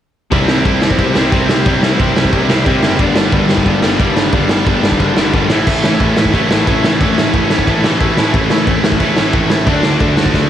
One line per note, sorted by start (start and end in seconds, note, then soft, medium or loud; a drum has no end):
0.31 0.47 C2 medium
0.31 0.49 C3 medium
0.31 0.49 G3 medium
0.31 0.49 C4 loud
0.31 0.48 E4 loud
0.31 kick loud
0.31 ride medium
0.48 0.64 C2 medium
0.48 0.65 C3 medium
0.48 0.65 G3 medium
0.48 0.66 C4 medium
0.48 0.66 E4 loud
0.48 snare loud
0.65 0.80 C2 medium
0.65 0.83 C3 loud
0.65 0.82 G3 loud
0.65 0.82 C4 loud
0.65 0.82 E4 loud
0.65 kick loud
0.65 ride medium
0.81 0.97 C2 loud
0.81 0.98 C3 medium
0.81 0.99 G3 medium
0.81 0.99 C4 medium
0.81 0.99 E4 medium
0.81 snare loud
0.91 kick medium
0.99 1.14 C2 medium
0.99 1.18 C3 medium
0.99 1.18 G3 loud
0.99 1.16 C4 loud
0.99 1.16 E4 loud
0.99 kick loud
0.99 ride medium
1.15 1.30 C2 medium
1.15 1.32 C3 medium
1.15 1.33 G3 medium
1.15 1.33 C4 medium
1.15 1.33 E4 medium
1.15 snare loud
1.32 1.47 C2 medium
1.32 1.50 C3 loud
1.32 1.51 G3 loud
1.32 1.50 C4 loud
1.32 1.49 E4 loud
1.32 kick loud
1.32 ride medium
1.49 1.65 C2 medium
1.49 1.65 C3 medium
1.49 1.67 G3 medium
1.49 1.66 C4 medium
1.49 1.67 E4 medium
1.49 snare loud
1.66 1.81 C2 loud
1.66 1.84 C3 medium
1.66 1.83 G3 medium
1.66 1.82 C4 medium
1.66 1.82 E4 loud
1.66 kick loud
1.66 ride medium
1.82 1.97 C2 loud
1.82 1.98 C3 medium
1.82 2.00 G3 medium
1.82 1.99 C4 medium
1.82 2.00 E4 medium
1.82 snare loud
1.99 2.15 C2 medium
1.99 2.17 C3 loud
1.99 2.17 G3 loud
1.99 2.16 C4 loud
1.99 2.16 E4 loud
1.99 kick loud
1.99 ride medium
2.16 2.31 C2 medium
2.16 2.32 C3 medium
2.16 2.33 G3 medium
2.16 2.33 C4 medium
2.16 2.33 E4 medium
2.16 snare loud
2.25 kick medium
2.33 2.48 C2 medium
2.33 2.50 C3 loud
2.33 2.50 G3 loud
2.33 2.50 C4 medium
2.33 2.49 E4 loud
2.33 kick loud
2.33 ride medium
2.49 2.64 C2 medium
2.49 2.64 C3 medium
2.49 2.66 G3 medium
2.49 2.66 C4 medium
2.49 2.66 E4 medium
2.49 snare loud
2.66 2.81 C2 medium
2.66 2.82 C3 loud
2.66 2.83 G3 loud
2.66 2.81 C4 loud
2.66 2.81 E4 loud
2.66 kick loud
2.66 ride medium
2.83 2.98 F#1 medium
2.83 2.99 C3 medium
2.83 3.00 G3 medium
2.83 2.98 C4 loud
2.83 2.98 E4 loud
2.83 snare loud
2.99 3.14 G1 loud
2.99 3.18 G2 medium
2.99 3.16 D3 medium
2.99 3.17 G3 medium
2.99 3.17 B3 medium
2.99 3.16 D4 loud
2.99 kick loud
2.99 ride medium
3.15 3.31 G1 loud
3.15 3.32 G2 medium
3.15 3.32 D3 medium
3.15 3.33 G3 medium
3.15 3.34 B3 medium
3.15 3.34 D4 medium
3.15 snare loud
3.32 3.48 G1 loud
3.32 3.50 G2 medium
3.32 3.50 D3 loud
3.32 3.50 G3 loud
3.32 3.49 B3 medium
3.32 3.48 D4 loud
3.32 kick loud
3.32 ride medium
3.49 3.64 G1 medium
3.49 3.64 G2 medium
3.49 3.65 D3 medium
3.49 3.65 G3 medium
3.49 3.66 B3 loud
3.49 3.66 D4 loud
3.49 snare loud
3.58 kick medium
3.65 3.81 G1 medium
3.65 3.83 G2 medium
3.65 3.82 D3 medium
3.65 3.82 G3 loud
3.65 3.81 B3 loud
3.65 3.81 D4 medium
3.65 kick loud
3.65 ride medium
3.82 3.98 G1 medium
3.82 3.98 G2 medium
3.82 3.99 D3 medium
3.82 3.99 G3 medium
3.82 3.99 B3 medium
3.82 3.99 D4 medium
3.82 snare loud
3.99 4.15 G1 medium
3.99 4.17 G2 loud
3.99 4.16 D3 loud
3.99 4.15 G3 loud
3.99 4.15 B3 loud
3.99 4.15 D4 loud
3.99 kick loud
3.99 ride medium
4.16 4.31 G1 medium
4.16 4.32 G2 medium
4.16 4.32 D3 medium
4.16 4.33 G3 medium
4.16 4.33 B3 medium
4.16 4.34 D4 medium
4.16 snare loud
4.33 4.48 G1 medium
4.33 4.50 G2 medium
4.33 4.49 D3 medium
4.33 4.49 G3 medium
4.33 4.49 B3 medium
4.33 4.48 D4 medium
4.33 kick loud
4.33 ride medium
4.48 4.64 G1 loud
4.48 4.66 G2 medium
4.48 4.66 D3 medium
4.48 4.67 G3 medium
4.48 4.67 B3 medium
4.48 4.68 D4 loud
4.48 snare loud
4.66 4.82 G1 medium
4.66 4.83 G2 loud
4.66 4.83 D3 medium
4.66 4.83 G3 loud
4.66 4.82 B3 loud
4.66 4.82 D4 loud
4.66 kick loud
4.66 ride medium
4.83 4.98 G1 medium
4.83 4.99 G2 medium
4.83 5.00 D3 medium
4.83 5.00 G3 medium
4.83 5.01 B3 medium
4.83 5.01 D4 loud
4.83 snare loud
4.92 kick medium
5.00 5.15 G1 medium
5.00 5.17 G2 medium
5.00 5.17 D3 loud
5.00 5.16 G3 medium
5.00 5.16 B3 loud
5.00 5.15 D4 loud
5.00 kick medium
5.00 ride medium
5.15 5.31 G1 medium
5.15 5.31 G2 medium
5.15 5.32 D3 medium
5.15 5.32 G3 medium
5.15 5.33 B3 loud
5.15 5.33 D4 medium
5.15 snare loud
5.33 5.49 G1 medium
5.33 5.49 G2 loud
5.33 5.49 D3 loud
5.33 5.49 G3 loud
5.33 5.49 B3 loud
5.33 5.50 D4 loud
5.33 kick loud
5.33 ride medium
5.49 5.65 A1 medium
5.49 5.68 A2 medium
5.49 5.68 E3 medium
5.49 5.67 A3 medium
5.49 5.67 C#4 loud
5.49 5.66 E4 loud
5.49 snare loud
5.67 5.82 A1 loud
5.67 5.84 A2 medium
5.67 5.84 E3 medium
5.67 5.85 A3 medium
5.67 5.85 C#4 medium
5.67 5.85 E4 loud
5.67 kick loud
5.67 crash loud
5.84 5.99 A1 loud
5.84 6.02 A2 medium
5.84 6.02 E3 medium
5.84 6.02 A3 medium
5.84 6.01 C#4 medium
5.84 6.00 E4 medium
5.84 snare loud
6.00 6.15 A1 medium
6.00 6.18 A2 medium
6.00 6.18 E3 medium
6.00 6.18 A3 loud
6.00 6.19 C#4 loud
6.00 6.19 E4 loud
6.00 kick loud
6.00 ride medium
6.17 6.32 A1 medium
6.17 6.36 A2 medium
6.17 6.35 E3 medium
6.17 6.35 A3 medium
6.17 6.35 C#4 medium
6.17 6.34 E4 medium
6.17 snare loud
6.25 kick medium
6.34 6.49 A1 medium
6.34 6.51 A2 medium
6.34 6.51 E3 medium
6.34 6.51 A3 medium
6.34 6.52 C#4 medium
6.34 6.53 E4 loud
6.34 kick medium
6.34 ride medium
6.51 6.66 A1 medium
6.51 6.69 A2 medium
6.51 6.69 E3 medium
6.51 6.68 A3 medium
6.51 6.67 C#4 medium
6.51 6.67 E4 loud
6.51 snare loud
6.67 6.82 A1 medium
6.67 6.84 A2 medium
6.67 6.84 E3 loud
6.67 6.85 A3 loud
6.67 6.85 C#4 loud
6.67 6.86 E4 loud
6.67 kick loud
6.67 ride medium
6.84 6.99 A1 medium
6.84 7.02 A2 medium
6.84 7.02 E3 medium
6.84 7.02 A3 medium
6.84 7.01 C#4 loud
6.84 7.01 E4 medium
6.84 snare loud
7.01 7.16 A1 loud
7.01 7.17 A2 medium
7.01 7.18 E3 medium
7.01 7.18 A3 medium
7.01 7.19 C#4 loud
7.01 7.19 E4 medium
7.01 kick loud
7.01 ride medium
7.18 7.33 A1 medium
7.18 7.36 A2 medium
7.18 7.36 E3 medium
7.18 7.35 A3 medium
7.18 7.35 C#4 medium
7.18 7.34 E4 medium
7.18 snare loud
7.33 7.49 A1 medium
7.33 7.50 A2 medium
7.33 7.50 E3 medium
7.33 7.51 A3 loud
7.33 7.51 C#4 loud
7.33 7.52 E4 medium
7.33 kick loud
7.33 ride medium
7.50 7.66 A1 medium
7.50 7.68 A2 medium
7.50 7.68 E3 medium
7.50 7.68 A3 loud
7.50 7.67 C#4 medium
7.50 7.66 E4 medium
7.50 snare loud
7.59 kick medium
7.67 7.82 A1 medium
7.67 7.83 A2 medium
7.67 7.83 E3 loud
7.67 7.84 A3 loud
7.67 7.84 C#4 loud
7.67 7.85 E4 loud
7.67 kick loud
7.67 ride medium
7.84 7.99 A1 medium
7.84 8.00 A2 medium
7.84 8.00 E3 medium
7.84 8.00 A3 medium
7.84 7.99 C#4 medium
7.84 7.99 E4 medium
7.84 snare loud
8.00 8.16 A1 medium
8.00 8.16 A2 loud
8.00 8.17 E3 loud
8.00 8.18 A3 loud
8.00 8.17 C#4 loud
8.00 8.18 E4 loud
8.00 kick loud
8.00 ride medium
8.17 8.33 A1 medium
8.17 8.35 A2 medium
8.17 8.35 E3 medium
8.17 8.35 A3 medium
8.17 8.34 C#4 medium
8.17 8.33 E4 loud
8.17 snare loud
8.34 8.49 A1 loud
8.34 8.49 A2 medium
8.34 8.50 E3 loud
8.34 8.51 A3 medium
8.34 8.50 C#4 loud
8.34 8.50 E4 medium
8.34 kick loud
8.34 ride medium
8.50 8.66 A1 medium
8.50 8.68 A2 medium
8.50 8.68 E3 medium
8.50 8.68 A3 medium
8.50 8.67 C#4 loud
8.50 8.66 E4 medium
8.50 snare loud
8.67 8.82 A1 loud
8.67 8.82 A2 medium
8.67 8.82 E3 medium
8.67 8.84 A3 medium
8.67 8.84 C#4 loud
8.67 8.84 E4 loud
8.67 kick loud
8.67 ride medium
8.83 8.99 A1 medium
8.83 9.01 A2 medium
8.83 9.00 E3 medium
8.83 9.00 A3 medium
8.83 8.99 C#4 medium
8.83 8.99 E4 medium
8.83 snare loud
8.92 kick medium
9.00 9.16 A1 medium
9.00 9.15 A2 medium
9.00 9.15 E3 medium
9.00 9.16 A3 medium
9.00 9.17 C#4 loud
9.00 9.17 E4 loud
9.00 kick medium
9.00 ride medium
9.16 9.32 A1 medium
9.16 9.34 A2 medium
9.16 9.34 E3 medium
9.16 9.33 A3 medium
9.16 9.33 C#4 loud
9.16 9.32 E4 medium
9.16 snare loud
9.21 9.51 A2 medium
9.33 9.49 A1 medium
9.33 9.49 A2 loud
9.33 9.49 E3 loud
9.33 9.50 A3 loud
9.33 9.50 C#4 loud
9.33 9.50 E4 loud
9.33 kick loud
9.33 ride medium
9.50 9.66 A1 medium
9.50 9.66 A2 medium
9.50 9.66 E3 loud
9.50 9.66 A3 medium
9.50 9.67 C#4 medium
9.50 9.67 E4 loud
9.50 snare loud
9.67 9.82 D2 loud
9.67 9.85 D3 medium
9.67 9.85 A3 medium
9.67 9.85 D4 medium
9.67 9.84 F#4 medium
9.67 kick loud
9.67 ride medium
9.83 10.00 D2 loud
9.83 10.00 D3 medium
9.83 10.01 A3 medium
9.83 10.02 D4 medium
9.83 10.02 F#4 medium
9.83 snare loud
10.00 10.16 D2 medium
10.00 10.18 D3 medium
10.00 10.18 A3 loud
10.00 10.17 D4 loud
10.00 10.17 F#4 loud
10.00 kick loud
10.00 ride medium
10.17 10.33 D2 loud
10.17 10.33 D3 medium
10.17 10.34 A3 medium
10.17 10.34 D4 medium
10.17 10.34 F#4 medium
10.17 snare loud
10.26 kick medium
10.34 10.49 D2 medium
10.34 10.50 D3 loud
10.34 10.50 A3 medium
10.34 10.49 D4 medium
10.34 10.49 F#4 loud
10.34 kick medium
10.34 snare medium